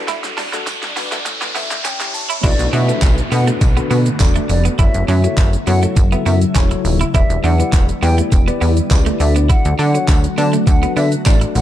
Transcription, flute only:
2.44 2.70 D5 loud
2.73 3.15 E5 medium
3.32 3.46 F#5 medium
4.49 4.63 D5 medium
4.79 5.05 E5 loud
5.08 5.51 E5 medium
5.67 5.81 F#5 medium
6.26 6.40 E5 medium
7.14 7.40 E5 loud
7.44 7.86 F#5 medium
8.02 8.16 G5 loud
9.20 9.34 E5 medium
9.50 9.75 F#5 loud
9.79 10.21 F#5 medium
10.37 10.51 A5 medium
10.67 10.93 F#5 loud
10.97 11.10 E5 medium
11.26 11.40 D5 medium
11.55 11.61 F#5 medium

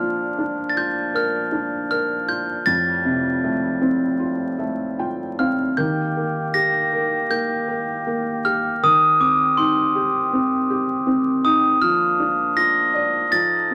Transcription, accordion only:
0.00 2.63 A#2 medium
0.00 5.74 F3 medium
0.00 2.63 D4 medium
2.66 5.75 A2 medium
2.66 5.75 G3 medium
5.78 11.78 D#3 medium
5.78 8.80 A#3 medium
5.78 11.78 G4 medium
8.82 11.79 C4 medium
11.82 13.74 F3 medium
11.82 13.32 A#3 medium
11.82 13.32 D4 medium
11.82 13.32 F4 medium
13.33 13.74 D#4 medium
13.33 13.74 A4 medium

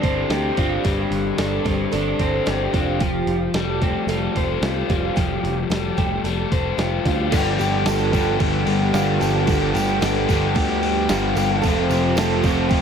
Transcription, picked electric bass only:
0.03 0.23 G1 medium
0.29 0.50 D2 medium
0.57 0.77 G1 medium
0.85 1.04 G1 medium
1.11 1.31 G1 loud
1.38 1.58 G1 medium
1.65 1.85 G1 medium
1.93 2.13 G1 loud
2.19 2.39 G1 medium
2.47 2.67 G1 medium
2.74 3.00 F1 medium
3.01 3.21 F1 medium
3.27 3.47 F1 medium
3.54 3.94 F1 medium
4.07 4.27 F1 medium
4.36 4.56 F1 medium
4.61 4.82 C2 medium
4.89 5.09 F1 medium
5.17 5.37 F1 medium
5.43 5.63 F1 medium
5.70 5.90 F1 loud
5.97 6.17 F1 medium
6.24 6.44 F1 medium
6.51 6.71 F1 medium
6.78 6.98 F1 medium
7.05 7.33 D2 medium
7.32 7.58 G1 loud
7.59 7.85 G1 loud
7.85 8.12 G1 loud
8.13 8.39 G1 medium
8.40 8.66 G1 loud
8.67 8.93 G1 medium
8.94 9.20 G1 medium
9.21 9.47 G1 medium
9.47 9.73 G1 medium
9.75 10.00 G1 loud
10.01 10.27 G1 loud
10.29 10.54 G1 medium
10.56 11.07 D2 loud
11.09 11.34 G1 medium
11.35 11.61 G1 medium
11.63 11.89 F1 loud
11.90 12.15 F1 loud
12.16 12.42 F1 loud
12.44 12.69 F1 loud
12.70 12.82 F1 loud

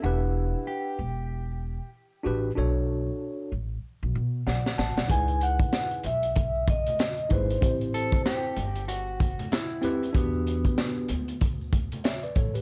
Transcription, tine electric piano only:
0.02 0.98 D4 medium
0.02 0.99 G4 medium
0.02 1.00 B4 medium
0.02 0.98 F#5 medium
2.24 2.50 D4 medium
2.24 2.50 F#4 medium
2.24 2.51 G4 medium
2.24 2.51 B4 medium
2.55 3.51 D4 medium
2.55 3.51 F#4 medium
2.55 3.52 A4 medium
2.55 3.52 C#5 medium
4.47 4.77 D5 medium
4.47 4.77 F#5 medium
4.78 4.96 F#5 medium
4.78 4.96 A5 medium
4.97 5.27 D5 medium
4.97 5.27 F#5 medium
5.08 6.03 D#4 medium
5.08 6.04 E4 medium
5.08 6.04 G#4 medium
5.08 6.05 B4 medium
7.29 7.55 D#4 medium
7.29 7.56 E4 medium
7.29 7.56 G#4 medium
7.29 7.57 B4 medium
7.61 8.56 C4 medium
7.61 8.57 E4 medium
7.61 8.57 G4 medium
7.61 8.58 C5 medium
9.81 10.07 C4 medium
9.81 10.08 E4 medium
9.81 10.09 G4 medium
9.81 10.09 B4 loud
10.13 11.08 D4 medium
10.13 11.09 F#4 medium
10.13 11.09 G4 medium
10.13 11.10 B4 medium
12.04 12.22 C#5 medium
12.04 12.22 E5 medium
12.23 12.36 B4 medium
12.23 12.35 D5 medium
12.36 12.54 A4 medium
12.36 12.54 C#5 medium
12.54 12.62 G4 medium
12.54 12.62 B4 medium

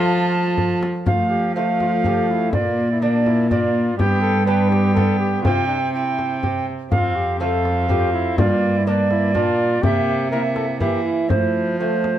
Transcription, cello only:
0.00 0.84 F3 medium
1.07 2.54 F3 medium
2.52 3.97 A#2 medium
3.98 5.40 G2 medium
5.44 6.69 C3 medium
6.92 8.34 F2 medium
8.37 9.35 G2 medium
9.34 9.82 A#2 medium
9.82 10.82 C3 medium
10.80 11.32 E3 medium
11.30 12.19 F3 medium

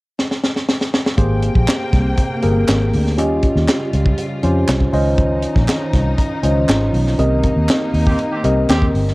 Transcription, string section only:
1.18 3.16 C3 medium
1.18 3.16 A#3 medium
1.18 3.16 G5 medium
3.17 4.91 C#3 medium
3.17 4.91 G3 medium
3.17 4.91 F4 medium
4.93 9.14 D#3 medium
4.93 7.16 F3 medium
4.93 7.16 D#4 medium
7.18 9.14 A#3 medium
7.18 9.14 D#4 medium

